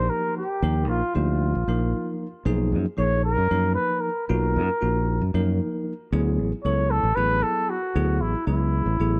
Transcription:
Already playing: F3 A#3 D#4 G4 C5
0.10 A#4
0.37 G4
0.62 D#2 F3 A#3 D#4 A#4
0.88 A#1 F4
1.15 D2 F3 A#3 D#4 F4 G4
1.55 A#1
1.68 A#1 F3 A#3 D#4 A#4
2.45 B1 F3 A#3 D#4 G#4
2.72 F#2
2.97 A#1 F3 A#3 D#4 G#4 C#5
3.24 A#4
3.38 F#2
3.51 F#2 F3 A#3 D#4 A#4
3.75 B4
4.01 A#4
4.28 B1 A#3 D#4 F4 F#4 A#4
4.56 F#2
4.81 A#1 A#3 D#4 F4 F#4
5.21 F#2
5.34 F#2 F3 A#3 D#4 A#4
6.12 D2 F#3 B3 E4 G#4
6.39 A1
6.64 C#2 F#3 B3 E4 A4 C#5
6.91 A4
7.03 A1
7.16 A1 F#3 B3 E4 G#4 B4
7.43 A4
7.70 F#4
7.95 D2 F#3 B3 E4 G#4
8.21 A1 E4
8.47 C#2 F#3 B3 E4 G#4
8.86 A1
9.00 A1 F#3 B3 E4 G#4

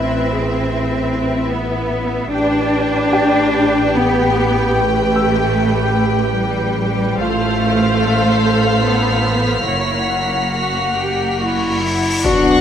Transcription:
Already playing: A1 C4 E4 B4 E5 B5 C6 F#6
0.33 G#4
1.51 B3
2.32 A1 D4 G4 B4 G5
3.12 G4 G5
3.94 B3
4.75 A3
5.16 E6
6.37 G3
7.19 A1 A3 F4 A4 C5 F5 F6
8.03 B6
8.84 B3
9.67 F#1 A#3 E4 C#5 F#5, cymbal swell
10.10 F#5
10.52 F#4
10.96 G4
11.40 E4 F#4
11.81 E4
12.23 B1 B2 B3 D4 F#4 D5 F#5 C#6 B6 C7, impact

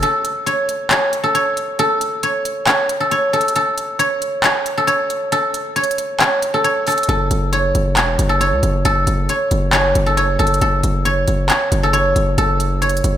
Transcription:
Already playing: C#5
0.03 A4, closed hi-hat
0.25 closed hi-hat
0.46 C#5, closed hi-hat
0.69 closed hi-hat
0.90 C#5, clap, closed hi-hat
1.13 closed hi-hat
1.24 A4
1.35 C#5, closed hi-hat
1.57 closed hi-hat
1.79 A4, closed hi-hat
2.01 closed hi-hat
2.23 C#5, closed hi-hat
2.45 closed hi-hat
2.67 C#5, clap, closed hi-hat
2.89 closed hi-hat
3.00 A4
3.11 C#5, closed hi-hat
3.33 A4, closed hi-hat
3.41 closed hi-hat
3.48 closed hi-hat
3.56 A4, closed hi-hat
3.78 closed hi-hat
3.99 C#5, closed hi-hat
4.22 closed hi-hat
4.44 C#5, clap, closed hi-hat
4.66 closed hi-hat
4.78 A4
4.87 C#5, closed hi-hat
5.10 closed hi-hat
5.32 A4, closed hi-hat
5.54 closed hi-hat
5.76 C#5, closed hi-hat
5.84 closed hi-hat
5.91 closed hi-hat
5.98 closed hi-hat
6.20 C#5, clap, closed hi-hat
6.42 closed hi-hat
6.54 A4
6.64 C#5, closed hi-hat
6.87 A4, closed hi-hat, open hi-hat
6.92 closed hi-hat
6.98 closed hi-hat
7.03 closed hi-hat
7.09 F#1 A4, closed hi-hat
7.31 F#1, closed hi-hat
7.53 C#5, closed hi-hat
7.75 F#1, closed hi-hat
7.97 E1 C#5, clap, closed hi-hat
8.19 F#1, closed hi-hat
8.29 A4
8.41 C#5, closed hi-hat
8.52 C#2
8.63 F#1, closed hi-hat
8.85 F#1 A4, closed hi-hat
9.07 F#1, closed hi-hat
9.29 C#5, closed hi-hat
9.51 F#1, closed hi-hat
9.73 C#5, clap, closed hi-hat
9.95 F#1, closed hi-hat
10.06 A4
10.17 C#5, closed hi-hat
10.39 F#1 A4, closed hi-hat
10.47 closed hi-hat
10.54 closed hi-hat
10.61 F#1 A4, closed hi-hat
10.83 F#1, closed hi-hat
11.05 C#5, closed hi-hat
11.28 F#1, closed hi-hat
11.50 C#5, clap, closed hi-hat
11.72 F#1, closed hi-hat
11.83 A4
11.93 C#5, closed hi-hat
12.16 F#1, closed hi-hat
12.38 F#1 A4, closed hi-hat
12.60 closed hi-hat
12.82 C#5, closed hi-hat
12.89 closed hi-hat
12.97 closed hi-hat
13.04 F#1, closed hi-hat

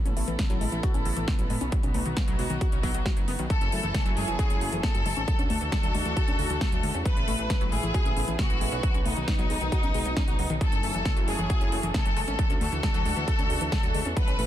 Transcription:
Already playing: B3 E4 A4
0.06 A1 C#4, closed hi-hat
0.17 A1 A3, open hi-hat
0.28 A1 E3, closed hi-hat
0.39 C#3, kick, snare, closed hi-hat
0.50 A1 F#3, closed hi-hat
0.61 A1 G#3, open hi-hat
0.72 A1 E3, closed hi-hat
0.83 F#4, kick, closed hi-hat
0.94 A1 C#4, closed hi-hat
1.05 A1 C#3, open hi-hat
1.17 A1 E3, closed hi-hat
1.28 C#3, kick, snare, closed hi-hat
1.39 A1 F#3, closed hi-hat
1.50 A1 G#3, open hi-hat
1.61 B1 C#4, closed hi-hat
1.72 F#3 D#4 F#4, kick, closed hi-hat
1.83 B1 C#4, closed hi-hat
1.94 B1 A3, open hi-hat
2.06 B1 D#3, closed hi-hat
2.17 C#3, kick, snare, closed hi-hat
2.28 B1 F#3, closed hi-hat
2.39 B1 G#3, open hi-hat
2.50 B1 D#3, closed hi-hat
2.61 F#4, kick, closed hi-hat
2.72 B1 C#4, closed hi-hat
2.83 B1 F#3, kick, open hi-hat
2.94 B1 F#3, closed hi-hat
3.06 F#4, kick, snare, closed hi-hat
3.17 F#1 F#3, closed hi-hat
3.28 F#1 B3, open hi-hat
3.39 B1 D#3, closed hi-hat
3.50 F#3 A3 C#4 E4 A4 G#5, kick, closed hi-hat
3.61 F#1 C#4, closed hi-hat
3.72 F#1 A3, open hi-hat
3.83 F#1 E3, closed hi-hat
3.95 C#3, kick, snare, closed hi-hat
4.06 F#1 F#3, closed hi-hat
4.17 F#1 G#3 G#4, open hi-hat
4.28 F#1 E3, closed hi-hat
4.39 F#4, kick, closed hi-hat
4.50 F#1 C#4, closed hi-hat
4.61 F#1 C#3, open hi-hat
4.72 F#1 E3, closed hi-hat
4.83 C#3 A4, kick, snare, closed hi-hat
4.95 F#1 F#3, closed hi-hat
5.06 F#1 G#3, open hi-hat
5.17 G#1 C#4, closed hi-hat
5.28 F#3 A3 D4 F#4, kick, closed hi-hat
5.39 D2 C#4, closed hi-hat
5.50 D2 A3 A4, open hi-hat
5.61 D2 E3, closed hi-hat
5.72 C#3, kick, snare, closed hi-hat
5.83 D2 F#3, closed hi-hat
5.94 D2 G#3, open hi-hat
6.06 D2 E3, closed hi-hat
6.17 F#4, kick, closed hi-hat
6.28 D2 C#4, closed hi-hat
6.39 D2 C#3, open hi-hat
6.50 D2 E3, closed hi-hat
6.61 C#3, kick, snare, closed hi-hat
6.72 D2 F#3, closed hi-hat
6.83 D2 G#3, open hi-hat
6.94 E2 C#4, closed hi-hat
7.05 F#3 B3 E4 B4, kick, closed hi-hat
7.17 A1 C#4, closed hi-hat
7.28 A1 A3, open hi-hat
7.39 A1 E3, closed hi-hat
7.50 C#3, kick, snare, closed hi-hat
7.61 A1 F#3, closed hi-hat
7.72 A1 G#3 G#4, open hi-hat
7.83 A1 E3, closed hi-hat
7.94 F#4, kick, closed hi-hat
8.06 A1 C#4, closed hi-hat
8.17 A1 C#3, open hi-hat
8.28 A1 E3, closed hi-hat
8.39 C#3 F#4, kick, snare, closed hi-hat
8.50 A1 F#3, closed hi-hat
8.61 A1 G#3, open hi-hat
8.72 B1 C#4, closed hi-hat
8.83 F#3 D#4, kick, closed hi-hat
8.94 B1 C#4, closed hi-hat
9.05 B1 A3 D#4, open hi-hat
9.17 B1 D#3, closed hi-hat
9.28 C#3, kick, snare, closed hi-hat
9.39 B1 F#3, closed hi-hat
9.50 B1 G#3, open hi-hat
9.61 B1 D#3, closed hi-hat
9.72 F#4, kick, closed hi-hat
9.83 B1 C#4, closed hi-hat
9.94 B1 G#3, open hi-hat
10.05 B1 F#3, closed hi-hat
10.17 C#4, kick, snare, closed hi-hat
10.28 B1 F#4, closed hi-hat
10.39 C#2 F#3, open hi-hat
10.50 B1 D#3, closed hi-hat
10.61 F#3 A3 C#4 E4 A4 G#5, kick, closed hi-hat
10.72 F#1 C#4, closed hi-hat
10.83 F#1 A3, open hi-hat
10.94 F#1 E3, closed hi-hat
11.05 C#3, kick, snare, closed hi-hat
11.17 F#1 F#3, closed hi-hat
11.28 F#1 G#3 G#4, open hi-hat
11.39 F#1 E3, closed hi-hat
11.50 F#4, kick, closed hi-hat
11.61 F#1 C#4, closed hi-hat
11.72 F#1 C#3, open hi-hat
11.83 F#1 E3, closed hi-hat
11.94 C#3 A4, kick, snare, closed hi-hat
12.06 F#1 F#3, closed hi-hat
12.17 F#1 G#3, open hi-hat
12.28 G#1 C#4, closed hi-hat
12.39 F#3 A3 D4 F#4, kick, closed hi-hat
12.50 D2 C#4, closed hi-hat
12.61 D2 A3 A4, open hi-hat
12.72 D2 E3, closed hi-hat
12.83 C#3, kick, snare, closed hi-hat
12.94 D2 F#3, closed hi-hat
13.05 D2 G#3, open hi-hat
13.17 D2 E3, closed hi-hat
13.28 F#4, kick, closed hi-hat
13.39 D2 C#4, closed hi-hat
13.50 D2 C#3, open hi-hat
13.61 D2 E3, closed hi-hat
13.72 C#3, kick, snare, closed hi-hat
13.83 D2 F#3, closed hi-hat
13.94 D2 G#3, open hi-hat
14.06 E2 C#4, closed hi-hat
14.17 F#3 B3 E4 B4, kick, closed hi-hat
14.28 A1 C#4, closed hi-hat
14.39 A1 A3, open hi-hat

